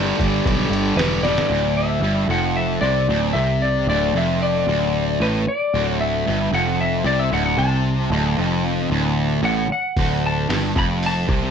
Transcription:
Already playing: picked electric bass G1, distorted electric guitar G2 D3 G3, electric slide guitar D5
0.18 picked electric bass G1, distorted electric guitar G3, kick, crash
0.23 distorted electric guitar D3
0.45 picked electric bass B1, kick, crash
0.69 picked electric bass G1, crash
0.96 picked electric bass E1, distorted electric guitar G2 D3, electric slide guitar B4, snare, crash
1.01 distorted electric guitar G3
1.23 distorted electric guitar D3 G3, electric slide guitar D5, snare
1.38 snare
1.49 picked electric bass D1, distorted electric guitar D2
1.77 electric slide guitar E5
2.00 picked electric bass G1, distorted electric guitar G2
2.28 picked electric bass F1, distorted electric guitar F2, electric slide guitar F#5
2.56 electric slide guitar E5
2.81 picked electric bass C2, distorted electric guitar C3, electric slide guitar D5
3.09 picked electric bass D1, distorted electric guitar D2
3.33 picked electric bass C2, distorted electric guitar C3, electric slide guitar E5
3.62 electric slide guitar D5
3.87 picked electric bass D1, distorted electric guitar D2, electric slide guitar D5
4.13 picked electric bass F1, distorted electric guitar F2
4.17 electric slide guitar E5
4.42 electric slide guitar D5
4.67 picked electric bass D1, distorted electric guitar D2
5.20 picked electric bass A1, distorted electric guitar A2, electric slide guitar B4
5.47 electric slide guitar D5, muted distorted electric guitar stroke, muted picked electric bass stroke
5.74 picked electric bass D1, distorted electric guitar D2
5.88 electric slide guitar C#5
6.01 electric slide guitar E5
6.27 picked electric bass G1, distorted electric guitar G2
6.51 picked electric bass F1, distorted electric guitar F2, electric slide guitar F#5
6.81 electric slide guitar E5
7.04 picked electric bass C2, distorted electric guitar C3, electric slide guitar D5
7.19 electric slide guitar E5
7.32 picked electric bass D1, distorted electric guitar D2, electric slide guitar F#5
7.46 electric slide guitar F#5
7.58 picked electric bass C2, distorted electric guitar C3, electric slide guitar A5
8.10 picked electric bass D1, distorted electric guitar D2
8.38 picked electric bass F1, distorted electric guitar F2
8.89 picked electric bass D1, distorted electric guitar D2
9.42 picked electric bass A1, distorted electric guitar A2, electric slide guitar F#5
9.70 electric slide guitar F#5, muted distorted electric guitar stroke, muted picked electric bass stroke
9.97 picked electric bass D1, distorted electric guitar D2, kick, open hi-hat
10.26 electric slide guitar A5
10.49 picked electric bass G1, distorted electric guitar G2, snare, open hi-hat
10.76 picked electric bass F1, distorted electric guitar F2, electric slide guitar B5, kick
11.03 electric slide guitar A5, open hi-hat
11.28 picked electric bass C2, distorted electric guitar C3, kick
11.42 snare

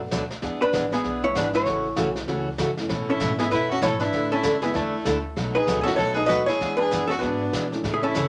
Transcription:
Already playing: upright bass F#2, upright piano F#3 A3 B3 D4 F#4
0.11 upright bass D2, steel-string acoustic guitar B2 F#3 A3 D4 F#4, snare, hi-hat pedal
0.30 snare
0.42 upright bass E2, steel-string acoustic guitar E3 B3 D4 G#4, brush sweep, snare
0.61 hollow-body jazz guitar D4 B4, muted upright bass stroke
0.73 upright bass A1, steel-string acoustic guitar E3 B3 D4 G#4, snare, hi-hat pedal
0.92 hollow-body jazz guitar B3 G#4, snare
1.04 upright bass B1, steel-string acoustic guitar E3 B3 D4 G#4, brush sweep, snare
1.23 upright piano E3 G#3 B3 D4 E4, hollow-body jazz guitar E4 C#5
1.35 upright bass G#1, steel-string acoustic guitar E3 B3 D4 G#4, hollow-body jazz guitar D4 B4, snare, hi-hat pedal
1.53 hollow-body jazz guitar E4 C#5, snare
1.65 upright bass A1, steel-string acoustic guitar C#3 E3 A3 C#4 F#4, brush sweep, snare
1.96 upright bass B1, steel-string acoustic guitar C#3 E3 A3 C#4 F#4, upright piano E3 F#3 A3 C#4 E4, snare, hi-hat pedal
2.16 snare
2.24 steel-string acoustic guitar C#3 E3 A3 C#4, upright piano E3 F#3, hollow-body jazz guitar B4, brush sweep, snare
2.28 upright bass C#2, upright piano A3 C#4 E4, steel-string acoustic guitar F#4
2.58 upright bass F#2, steel-string acoustic guitar C#3 E3 A3 C#4 F#4, snare, hi-hat pedal
2.77 upright piano E3 A3 B3 C#4 E4, snare
2.89 upright bass A2, steel-string acoustic guitar B2 E3 A3 C#4 A4, brush sweep, snare
3.09 hollow-body jazz guitar C#4 A4, fiddle E4
3.20 upright bass G#2, steel-string acoustic guitar B2 E3 A3 C#4 A4, snare, hi-hat pedal
3.38 upright piano E3 A3 B3 C#4 E4, hollow-body jazz guitar B3 G#4, fiddle E4, snare
3.51 upright bass F#2, steel-string acoustic guitar B2 E3 A3 C#4 A4, fiddle E4, hollow-body jazz guitar E4 B4, brush sweep, snare
3.71 hollow-body jazz guitar C#4 A4, fiddle F#4
3.81 upright bass G#2, steel-string acoustic guitar B2 E3 A3 C#4 A4, hollow-body jazz guitar E4 C#5, fiddle A4, snare, hi-hat pedal
4.00 hollow-body jazz guitar D4 B4, fiddle E4, snare
4.12 upright bass A2, steel-string acoustic guitar D3 A3 D4 E4 A4, brush sweep, snare
4.32 hollow-body jazz guitar C#4 A4, fiddle E4
4.43 upright bass F#2, steel-string acoustic guitar D3 A3 D4 E4 A4, snare, hi-hat pedal
4.62 upright piano D3 E3 A3 D4 E4, hollow-body jazz guitar B3 G#4, fiddle E4, snare
4.74 upright bass E2, steel-string acoustic guitar D3 A3 D4 E4 A4, hollow-body jazz guitar A3 E4, fiddle A3, brush sweep, snare
5.05 upright bass D2, steel-string acoustic guitar D3 A3 D4 E4 A4, snare, hi-hat pedal
5.36 upright bass B1, steel-string acoustic guitar B2 F#3 A3 D#4 F#4, brush sweep, snare
5.55 hollow-body jazz guitar D#4 B4, fiddle G#4
5.67 upright bass C#2, steel-string acoustic guitar B2 F#3 A3 D#4 F#4, snare, hi-hat pedal
5.81 hollow-body jazz guitar C#4 G#4 A4, fiddle E4 F#4
5.86 upright piano D#3 F#3 A3 B3 D#4, muted upright bass stroke, snare
5.96 upright bass B1, steel-string acoustic guitar B2 F#3 A3 D#4 F#4, hollow-body jazz guitar F#4 C#5, fiddle A4, brush sweep, snare
6.14 hollow-body jazz guitar D#4 B4, fiddle G#4
6.26 upright bass D#2, steel-string acoustic guitar B2 F#3 A3 D#4 F#4, hollow-body jazz guitar F#4 D#5, fiddle B4, snare, hi-hat pedal
6.46 hollow-body jazz guitar E4 C#5, fiddle G#4, snare
6.59 upright bass E2, upright piano E3 G#3 B3 D4 E4, steel-string acoustic guitar E3 B3 D4 G#4, brush sweep, snare
6.77 hollow-body jazz guitar D4 B4, fiddle G#4
6.91 upright bass F#2, steel-string acoustic guitar E3 B3 D4 G#4, snare, hi-hat pedal
7.07 hollow-body jazz guitar C#4 A4, fiddle F#4, snare
7.19 upright bass G#2, steel-string acoustic guitar E3 B3, hollow-body jazz guitar B3 F#4, brush sweep, snare
7.23 steel-string acoustic guitar D4 G#4, fiddle D4
7.53 upright bass B2, steel-string acoustic guitar E3 B3 D4 G#4, snare, hi-hat pedal
7.71 upright piano E3 G#3 A3 C#4 E4, snare
7.84 upright bass A2, steel-string acoustic guitar C#3 E3 A3 C#4 G#4, brush sweep, snare
7.94 fiddle E4, hollow-body jazz guitar G#4
8.03 hollow-body jazz guitar C#4 A4, fiddle E4
8.15 upright bass F#2, steel-string acoustic guitar C#3 E3 A3 C#4 G#4, snare, hi-hat pedal

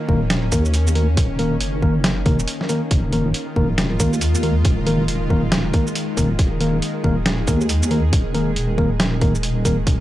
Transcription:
Already playing: synth drone D#3 A#3 C#4
0.09 wobble bass D#1, tine electric piano D#3 A#3 A#4, kick
0.30 snare, closed hi-hat
0.52 wobble bass D#2, tine electric piano D#3 A#3 A#4, kick, closed hi-hat, shaker
0.65 shaker
0.74 closed hi-hat, shaker
0.87 shaker
0.95 tine electric piano D#3 A#3 A#4, closed hi-hat
1.17 wobble bass D#1, kick, closed hi-hat
1.39 tine electric piano D#3 A#3 A#4, closed hi-hat
1.61 wobble bass F#1, closed hi-hat
1.82 tine electric piano D#3 A#3 A#4, kick
2.04 snare, closed hi-hat
2.21 wobble bass F1
2.26 tine electric piano D#3 A#3 A#4, kick, closed hi-hat
2.39 shaker
2.48 closed hi-hat
2.61 snare
2.69 tine electric piano D#3 A#3 A#4, closed hi-hat, shaker
2.91 wobble bass D#1, synth drone G#3 F4, kick, closed hi-hat
3.13 tine electric piano D#3 A#3 A#4, closed hi-hat
3.34 closed hi-hat
3.56 wobble bass D#1, tine electric piano D#3 A#3 A#4, kick
3.78 snare, closed hi-hat
4.00 wobble bass D#2, tine electric piano D#3 A#3 A#4, kick, closed hi-hat, shaker
4.13 shaker
4.21 closed hi-hat, shaker
4.35 shaker
4.43 tine electric piano D#3 A#3 A#4, closed hi-hat
4.65 wobble bass D#1, kick, closed hi-hat
4.87 tine electric piano D#3 A#3 A#4, closed hi-hat
5.08 wobble bass D#1, closed hi-hat
5.30 tine electric piano D#3 A#3 A#4, kick
5.52 snare, closed hi-hat
5.74 tine electric piano D#3 A#3 A#4, kick, closed hi-hat
5.87 shaker
5.95 closed hi-hat
6.17 wobble bass D#1, tine electric piano D#3 A#3 A#4, kick, closed hi-hat, shaker
6.39 wobble bass D#1, synth drone G#4, kick, closed hi-hat
6.61 tine electric piano D#3 A#3 A#4, closed hi-hat
6.82 closed hi-hat
7.04 wobble bass D#1, tine electric piano D#3 A#3 A#4, kick
7.26 snare, closed hi-hat
7.47 wobble bass D#2, tine electric piano D#3 A#3 A#4, kick, closed hi-hat, shaker
7.61 shaker
7.69 closed hi-hat, shaker
7.83 shaker
7.91 tine electric piano D#3 A#3 A#4, closed hi-hat
8.13 wobble bass D#1, kick, closed hi-hat
8.34 tine electric piano D#3 A#3 A#4, closed hi-hat
8.56 wobble bass D#1, closed hi-hat
8.78 tine electric piano D#3 A#3 A#4, kick
9.00 snare, closed hi-hat
9.21 tine electric piano D#3 A#3 A#4, kick, closed hi-hat
9.35 shaker
9.43 closed hi-hat
9.65 tine electric piano D#3 A#3 A#4, kick, closed hi-hat, shaker
9.87 wobble bass D#1, synth drone F4, kick, closed hi-hat

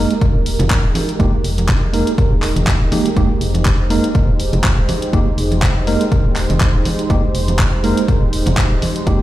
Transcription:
Already playing: tine electric piano G#3 A#3 D#4 A#4, analog synth pad G#3 D#4 G4 A#4
0.11 closed hi-hat
0.21 kick, closed hi-hat
0.35 fm bass D#1
0.46 open hi-hat
0.59 fm bass F1, closed hi-hat, high conga, low conga
0.70 kick, clap, closed hi-hat
0.84 fm bass D#1
0.95 open hi-hat, high conga
1.09 closed hi-hat
1.19 fm bass F1, tine electric piano G#3 A#3 D#4 G4, kick, closed hi-hat
1.44 fm bass F1, open hi-hat
1.58 closed hi-hat, high conga
1.69 kick, clap, closed hi-hat, low conga
1.93 tine electric piano G#3 A#3 D#4 A#4, open hi-hat
2.07 closed hi-hat
2.18 kick, closed hi-hat
2.32 fm bass D#1
2.42 clap, open hi-hat
2.56 fm bass F1, closed hi-hat, high conga
2.67 kick, clap, closed hi-hat
2.81 fm bass D#1
2.92 tine electric piano G#3 A#3 D#4 G4, open hi-hat, high conga
3.06 closed hi-hat
3.16 fm bass F1, tine electric piano G#3 A#3 D#4 G4, analog synth pad C5, kick, closed hi-hat
3.41 fm bass F1, open hi-hat
3.55 closed hi-hat, high conga
3.65 kick, clap, closed hi-hat
3.90 tine electric piano G#3 A#3 D#4 A#4, open hi-hat
4.04 closed hi-hat
4.15 kick, closed hi-hat
4.28 fm bass D#1
4.40 open hi-hat
4.53 fm bass F1, closed hi-hat, high conga, low conga
4.64 kick, clap, closed hi-hat
4.78 fm bass D#1
4.89 open hi-hat, high conga
5.02 closed hi-hat
5.13 fm bass F1, tine electric piano G#3 A#3 D#4 G4, kick, closed hi-hat
5.38 fm bass F1, open hi-hat
5.52 closed hi-hat, high conga
5.62 kick, clap, closed hi-hat, low conga
5.87 tine electric piano G#3 A#3 D#4 A#4, open hi-hat
6.01 closed hi-hat
6.12 kick, closed hi-hat
6.25 fm bass D#1
6.36 clap, open hi-hat
6.50 fm bass F1, closed hi-hat, high conga
6.60 kick, clap, closed hi-hat
6.74 fm bass D#1
6.85 open hi-hat, high conga
6.99 closed hi-hat
7.10 fm bass F1, tine electric piano G#3 A#3 D#4 G4, kick, closed hi-hat
7.35 fm bass F1, open hi-hat
7.48 closed hi-hat, high conga
7.59 kick, clap, closed hi-hat
7.83 tine electric piano G#3 A#3 D#4 A#4, open hi-hat
7.97 closed hi-hat
8.08 kick, closed hi-hat
8.22 fm bass D#1
8.33 open hi-hat
8.46 fm bass F1, closed hi-hat, high conga, low conga
8.57 kick, clap, closed hi-hat
8.71 fm bass D#1
8.82 open hi-hat, high conga
8.96 closed hi-hat
9.06 fm bass F1, tine electric piano G#3 A#3 D#4 G4, kick, closed hi-hat

